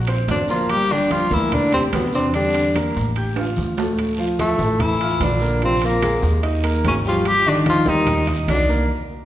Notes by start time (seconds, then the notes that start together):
Already playing: A#1
0.07 C4 C5 C6, high timbale
0.28 G1 D3 D4, high conga, high timbale, low timbale, short guiro
0.48 F3 A#3 F4 A#4 A#5, short guiro
0.69 G3 G4, high conga, high timbale, long guiro
0.90 D3 G3 D4 G4 G5, high conga
1.11 F3 F4, high conga, high timbale, low timbale, short guiro
1.31 D2 E3 A#3 E4 A#4 A#5, high conga, short guiro
1.52 D3 D4, high conga, low conga, high timbale, long guiro
1.72 C3 C4 G4 G5 G6, high conga, low conga, high timbale
1.93 E2 B2 B3, high conga, high timbale, low timbale, short guiro
2.13 C3 C4 D4 D5 D6, short guiro
2.34 D3 G3 D4 G4 G5, high conga, high timbale, long guiro
2.55 high conga, high timbale
2.74 A#3 A#4 A#5, high conga, high timbale, low timbale, short guiro
2.95 A1, high conga, short guiro
3.16 G4 G5 G6, high conga, high timbale, long guiro
3.36 F4 F5 F6, high conga, high timbale
3.56 D2, high conga, short guiro
3.77 A3 A4 A5, low timbale, short guiro
3.98 high conga, high timbale, long guiro
4.18 F3 F4 F5, high conga
4.39 A2 A3, high conga, high timbale, low timbale, short guiro
4.59 A1 A3 A4 A5, high conga, short guiro
4.80 E3 E4, high conga, low conga, high timbale, long guiro
5.00 F4 F5 F6, high conga, high timbale
5.20 A#1 D3 D4, high conga, high timbale, low timbale, short guiro
5.40 A#3 A#4 A#5, short guiro
5.60 C3 F3 F4 F5, high conga, high timbale, long guiro
5.65 C4
5.82 A#2 A#3, high conga, high timbale
6.01 G#3 G#4 G#5, high conga, high timbale, low timbale, short guiro
6.22 D#2, high conga, short guiro
6.43 D#4 D#5 D#6, high conga, high timbale, long guiro
6.63 A#3 A#4 A#5, high conga, high timbale
6.84 G#1 C#3 C#4, high conga, high timbale, low timbale, short guiro
7.05 F3 G3 F4 G4 G5, short guiro
7.25 G3 G4, high conga, high timbale, long guiro
7.46 D3 D#3 D4 D#4 D#5, high conga
7.66 F3 F4, high conga, high timbale, low timbale, short guiro
7.86 D#2 D#3 G3 D#4 G4 G5, high conga, short guiro
8.07 high conga, low conga, high timbale, long guiro
8.27 D#4 D#5 D#6, high conga, low conga, high timbale
8.48 C2 D3 D4, high conga, high timbale, low timbale, short guiro
8.69 A#3 A#4 A#5, short guiro